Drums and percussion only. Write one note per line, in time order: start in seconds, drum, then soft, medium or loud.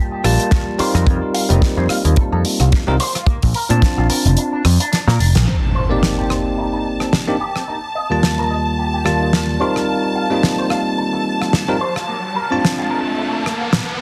0.24 cross-stick medium
0.24 open hi-hat loud
0.40 closed hi-hat medium
0.51 kick loud
0.51 snare loud
0.51 closed hi-hat medium
0.79 open hi-hat medium
0.95 cross-stick medium
0.95 closed hi-hat medium
1.07 kick loud
1.07 closed hi-hat medium
1.35 open hi-hat loud
1.50 closed hi-hat medium
1.62 kick loud
1.62 snare loud
1.62 closed hi-hat medium
1.89 cross-stick medium
1.89 open hi-hat medium
2.05 closed hi-hat medium
2.16 kick medium
2.16 closed hi-hat medium
2.45 open hi-hat medium
2.60 cross-stick medium
2.60 closed hi-hat medium
2.72 kick loud
2.72 snare loud
2.72 closed hi-hat medium
3.00 open hi-hat loud
3.15 cross-stick medium
3.15 closed hi-hat medium
3.27 kick loud
3.27 closed hi-hat medium
3.42 kick medium
3.42 open hi-hat medium
3.54 open hi-hat loud
3.70 closed hi-hat medium
3.82 kick loud
3.82 snare loud
3.82 closed hi-hat medium
4.10 open hi-hat loud
4.26 closed hi-hat medium
4.37 closed hi-hat medium
4.65 cross-stick medium
4.65 open hi-hat loud
4.80 closed hi-hat medium
4.93 snare medium
4.93 closed hi-hat medium
5.08 snare medium
5.20 open hi-hat medium
5.35 snare medium
5.35 closed hi-hat medium
6.03 snare loud
6.30 cross-stick medium
7.00 cross-stick medium
7.13 snare loud
7.56 cross-stick medium
8.23 snare loud
9.06 cross-stick medium
9.33 snare loud
9.76 cross-stick medium
10.43 snare loud
10.70 cross-stick medium
11.42 cross-stick medium
11.53 snare loud
11.96 cross-stick medium
12.65 snare loud
13.46 cross-stick medium
13.73 snare loud